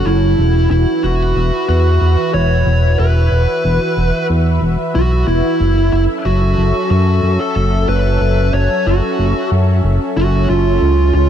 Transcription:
0.00 0.35 F#3 medium
0.00 0.35 C#4 medium
0.00 5.56 F#4 medium
0.00 0.34 A4 medium
0.06 0.36 F#1 medium
0.06 0.67 E4 medium
0.38 0.68 E1 loud
0.38 5.56 E3 medium
0.38 5.56 B4 medium
0.38 10.78 E5 medium
0.71 0.86 E1 loud
0.71 1.01 E4 medium
1.03 1.34 E1 medium
1.03 1.68 F#4 medium
1.36 1.51 E1 medium
1.69 1.99 E2 loud
1.69 2.30 F#4 medium
2.02 2.17 E2 medium
2.34 2.64 E1 medium
2.34 2.99 C#5 loud
2.67 2.97 E1 loud
2.99 3.29 E1 medium
2.99 4.26 B4 loud
3.32 3.47 E1 medium
3.65 3.80 E1 loud
3.97 4.12 E1 medium
4.30 4.60 E2 medium
4.62 4.77 E1 medium
4.95 5.25 B1 medium
4.95 5.27 F#4 medium
5.28 5.43 E1 medium
5.28 5.92 E4 medium
5.60 5.90 F#1 loud
5.60 10.78 F#3 medium
5.60 11.29 C#4 medium
5.60 10.78 A4 medium
5.93 6.08 F#1 medium
5.93 6.02 E4 medium
6.25 6.55 F#1 medium
6.25 6.90 F#4 medium
6.58 6.73 F#1 medium
6.91 7.21 F#2 medium
6.91 7.41 F#4 medium
7.23 7.38 F#2 medium
7.40 7.88 A4 loud
7.56 7.86 F#1 medium
7.89 8.18 F#1 loud
7.89 8.54 B4 loud
8.21 8.51 F#1 medium
8.54 8.69 F#1 medium
8.54 8.87 C#5 loud
8.87 9.01 F#1 loud
8.87 9.48 F#4 medium
9.19 9.34 F#1 medium
9.52 9.81 F#2 medium
9.84 9.99 F#1 medium
10.17 10.47 F#1 loud
10.17 10.47 F#4 loud
10.49 10.79 F#1 medium
10.49 11.13 F4 loud
10.82 11.12 C#2 loud
10.82 11.29 C#3 medium
10.82 11.29 G#4 medium
10.82 11.29 F5 medium
11.15 11.29 C#2 loud
11.15 11.29 F4 loud

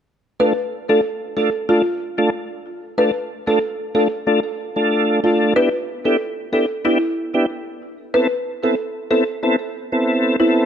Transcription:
0.40 0.53 A3 medium
0.40 0.53 D4 medium
0.40 0.53 F4 medium
0.40 0.53 A4 medium
0.40 0.67 B4 loud
0.89 1.01 A3 medium
0.89 1.01 D4 medium
0.89 1.01 F4 medium
0.89 1.16 A4 medium
0.89 1.01 A4 medium
1.37 1.50 A3 medium
1.37 1.50 D4 medium
1.37 1.50 F4 medium
1.37 1.63 A4 medium
1.37 1.50 A4 medium
1.69 1.82 A3 medium
1.69 1.82 D4 medium
1.69 2.15 F4 medium
1.69 1.82 F4 medium
1.69 1.82 A4 loud
2.18 2.30 A3 medium
2.18 2.30 D4 medium
2.18 2.30 F4 medium
2.18 2.30 A4 medium
2.98 3.11 A3 medium
2.98 3.11 D4 medium
2.98 3.11 F4 medium
2.98 3.11 A4 medium
2.98 3.25 B4 loud
3.47 3.59 A3 medium
3.47 3.59 D4 medium
3.47 3.59 F4 medium
3.47 3.74 A4 medium
3.47 3.59 A4 medium
3.95 4.08 A3 medium
3.95 4.08 D4 medium
3.95 4.08 F4 medium
3.95 4.21 A4 medium
3.95 4.08 A4 medium
4.27 4.40 A3 medium
4.27 4.40 D4 medium
4.27 4.40 F4 medium
4.27 4.40 A4 medium
4.76 5.20 A3 medium
4.76 5.20 D4 medium
4.76 5.20 F4 medium
4.76 5.20 A4 medium
5.23 5.53 A3 medium
5.23 5.54 D4 medium
5.23 5.54 F4 medium
5.23 5.38 F4 medium
5.23 5.54 A4 medium
5.56 5.69 B3 medium
5.56 5.69 D4 medium
5.56 5.69 E4 medium
5.56 5.69 G4 loud
5.56 5.83 B4 loud
6.05 6.17 B3 medium
6.05 6.17 D4 medium
6.05 6.17 E4 medium
6.05 6.17 G4 medium
6.05 6.32 A4 medium
6.52 6.66 B3 medium
6.52 6.66 D4 medium
6.52 6.66 E4 medium
6.52 6.66 G4 medium
6.52 6.79 A4 medium
6.85 6.98 B3 medium
6.85 6.98 D4 medium
6.85 6.98 E4 medium
6.85 7.32 E4 medium
6.85 6.98 G4 loud
7.34 7.46 B3 medium
7.34 7.46 D4 medium
7.34 7.46 E4 medium
7.34 7.46 G4 medium
8.14 8.27 B3 medium
8.14 8.27 C4 medium
8.14 8.27 E4 medium
8.14 8.27 A4 loud
8.14 8.41 B4 loud
8.63 8.75 B3 medium
8.63 8.75 C4 medium
8.63 8.75 E4 medium
8.63 8.90 A4 medium
8.63 8.75 A4 medium
9.11 9.24 B3 medium
9.11 9.24 C4 medium
9.11 9.24 E4 medium
9.11 9.37 A4 medium
9.11 9.24 A4 medium
9.43 9.56 B3 medium
9.43 9.56 C4 medium
9.43 9.56 E4 medium
9.43 9.56 A4 loud
9.92 10.36 B3 medium
9.92 10.36 C4 medium
9.92 10.36 E4 medium
9.92 10.36 A4 medium
10.40 10.65 B3 medium
10.40 10.65 C4 medium
10.40 10.54 E4 medium
10.40 10.65 E4 medium
10.40 10.65 A4 medium

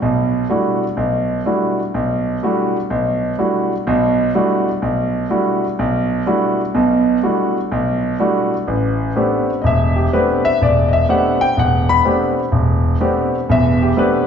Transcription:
0.02 0.43 B1 medium
0.02 0.43 B2 medium
0.49 0.83 G3 soft
0.49 0.83 A3 medium
0.49 0.83 D4 soft
0.49 0.83 E4 medium
0.49 0.83 F#4 medium
0.97 1.39 B1 medium
1.46 1.79 G3 medium
1.46 1.79 A3 soft
1.46 1.79 D4 soft
1.46 1.79 E4 soft
1.46 1.80 F#4 medium
1.94 2.36 B1 medium
2.43 2.76 G3 medium
2.43 2.76 A3 soft
2.43 2.76 D4 medium
2.43 2.76 E4 soft
2.43 2.76 F#4 medium
2.90 3.32 B1 medium
3.38 3.71 G3 soft
3.38 3.72 A3 soft
3.38 3.72 D4 soft
3.38 3.72 E4 soft
3.38 3.72 F#4 medium
3.87 4.28 B1 medium
3.87 4.28 B2 medium
4.35 4.68 G3 medium
4.35 4.68 A3 medium
4.35 4.68 D4 medium
4.35 4.68 E4 soft
4.35 4.68 F#4 medium
4.82 5.24 B1 medium
5.30 5.64 G3 medium
5.30 5.64 A3 soft
5.30 5.64 D4 soft
5.30 5.64 E4 soft
5.30 5.64 F#4 medium
5.79 6.21 B1 medium
6.26 6.60 G3 medium
6.26 6.60 A3 medium
6.26 6.60 D4 medium
6.26 6.60 E4 medium
6.26 6.60 F#4 medium
6.75 7.17 B1 medium
6.75 7.17 B2 medium
7.23 7.56 G3 medium
7.23 7.56 A3 soft
7.23 7.57 D4 soft
7.23 7.57 E4 soft
7.23 7.57 F#4 medium
7.72 8.13 B1 medium
8.19 8.53 G3 medium
8.19 8.53 A3 medium
8.19 8.53 D4 medium
8.19 8.53 E4 medium
8.19 8.53 F#4 medium
8.68 9.09 A1 medium
9.16 9.49 A3 medium
9.16 9.49 B3 soft
9.16 9.49 C4 soft
9.16 9.50 D4 soft
9.16 9.50 G4 medium
9.62 10.06 E1 medium
9.62 9.65 D#5 medium
9.67 9.96 E5 medium
9.96 10.12 G4 medium
10.13 10.46 A3 medium
10.13 10.46 B3 soft
10.13 10.46 C4 soft
10.13 10.46 D4 soft
10.13 10.46 G4 medium
10.13 10.43 B4 medium
10.45 10.60 E5 medium
10.61 11.03 E1 medium
10.61 10.92 D5 medium
10.88 10.91 D#5 medium
10.93 11.09 E5 medium
11.09 11.42 A3 medium
11.09 11.42 B3 medium
11.09 11.42 C4 soft
11.09 11.42 D4 medium
11.09 11.42 G4 medium
11.09 11.40 F#5 medium
11.41 11.57 G5 loud
11.57 11.99 E1 medium
11.57 11.89 F#5 medium
11.89 11.99 B5 loud
12.05 12.38 A3 medium
12.05 12.38 B3 medium
12.05 12.38 C4 medium
12.05 12.39 D4 soft
12.05 12.39 G4 medium
12.52 12.94 E1 medium
13.01 13.34 A3 medium
13.01 13.34 B3 medium
13.01 13.35 C4 medium
13.01 13.34 D4 soft
13.01 13.35 G4 medium
13.49 13.91 E1 medium
13.49 13.91 E2 medium
13.49 13.81 E5 medium
13.82 13.96 G4 medium
13.97 14.27 A3 medium
13.97 14.27 B3 medium
13.97 14.27 C4 soft
13.97 14.27 D4 soft
13.97 14.27 G4 medium
13.97 14.27 B4 medium

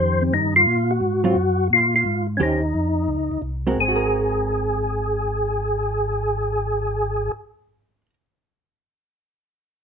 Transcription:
0.00 0.32 F2 medium
0.00 0.60 D#3 medium
0.00 0.60 C#4 medium
0.00 0.60 G4 medium
0.00 0.23 C5 loud
0.00 0.60 C5 medium
0.21 0.34 C4 medium
0.32 0.66 G2 medium
0.32 0.54 D#4 medium
0.56 0.91 F4 loud
0.66 1.00 A#2 loud
0.91 1.68 F#4 loud
1.01 1.35 G#2 medium
1.24 1.35 F#3 medium
1.24 1.35 C4 medium
1.24 1.36 F4 medium
1.36 1.70 F#2 medium
1.70 2.04 A#2 medium
1.70 1.95 F4 medium
1.96 2.27 F4 medium
2.05 2.39 G#2 medium
2.37 2.74 D#2 medium
2.37 2.60 D#3 medium
2.37 2.41 C#4 medium
2.37 2.60 C#4 medium
2.37 2.61 G4 medium
2.37 2.61 C5 medium
2.43 3.41 D#4 medium
2.74 3.08 F2 medium
3.08 3.30 C#2 medium
3.32 3.38 C#2 soft
3.42 3.77 C2 medium
3.67 3.70 G#3 medium
3.67 3.78 C4 medium
3.67 3.78 F#4 medium
3.67 3.78 A#4 medium
3.71 8.01 G#3 medium
3.77 7.30 G#1 medium
3.77 7.32 G#4 medium
3.88 8.10 F#4 medium
3.96 8.13 A#4 medium

